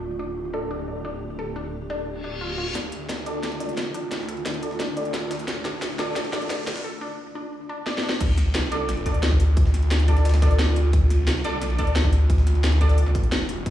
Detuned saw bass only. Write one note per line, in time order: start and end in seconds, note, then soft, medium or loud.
0.00 2.73 D1 medium
2.75 2.91 D2 medium
2.92 3.51 D2 medium
3.51 3.76 C#2 medium
3.77 4.10 F1 medium
4.12 4.95 D2 loud
4.97 5.46 D2 medium
5.48 5.64 D2 loud
5.65 6.49 D2 loud
6.50 6.83 F1 loud
8.21 8.53 D2 loud
8.55 9.04 C2 loud
9.06 9.39 D2 medium
9.40 10.75 D2 medium
10.76 10.92 D2 medium
10.93 11.26 D2 loud
11.27 11.77 C2 loud
11.79 12.11 D2 loud
12.13 12.45 D2 medium
12.47 12.62 D2 loud
12.64 13.14 D2 loud
13.15 13.65 E1 medium
13.66 13.70 D2 loud